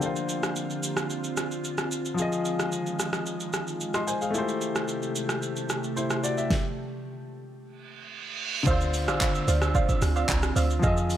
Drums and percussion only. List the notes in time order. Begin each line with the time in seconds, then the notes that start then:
0.02 shaker
0.16 shaker
0.29 shaker
0.43 cross-stick, shaker
0.56 shaker
0.70 shaker
0.83 shaker
0.97 cross-stick, shaker
1.10 shaker
1.24 shaker
1.37 cross-stick, shaker
1.51 shaker
1.64 shaker
1.78 cross-stick, shaker
1.91 shaker
2.05 shaker
2.18 shaker
2.32 shaker
2.45 shaker
2.59 cross-stick, shaker
2.72 shaker
2.86 shaker
2.99 cross-stick, shaker
3.13 cross-stick, shaker
3.26 shaker
3.40 shaker
3.53 cross-stick, shaker
3.68 shaker
3.81 shaker
3.94 cross-stick, shaker
4.08 shaker
4.22 shaker
4.34 shaker
4.48 shaker
4.61 shaker
4.76 cross-stick, shaker
4.88 shaker
5.03 shaker
5.16 shaker
5.29 cross-stick, shaker
5.42 shaker
5.56 shaker
5.69 cross-stick, shaker
5.84 shaker
5.97 shaker
6.10 cross-stick, shaker
6.24 shaker
6.38 shaker
6.50 kick, snare
8.67 kick, high agogo, shaker
8.81 shaker
8.94 open hi-hat, shaker
9.08 cross-stick, high agogo, shaker
9.21 kick, clap, shaker
9.35 high agogo, shaker
9.48 open hi-hat, shaker
9.62 cross-stick, high agogo, shaker
9.75 kick, shaker
9.89 kick, high agogo, shaker
10.02 cross-stick, open hi-hat, shaker
10.16 high agogo, shaker
10.29 kick, clap, low woodblock, shaker
10.43 cross-stick, shaker
10.56 open hi-hat, high agogo, shaker
10.70 shaker
10.83 kick, high agogo, shaker
10.97 shaker
11.10 open hi-hat, shaker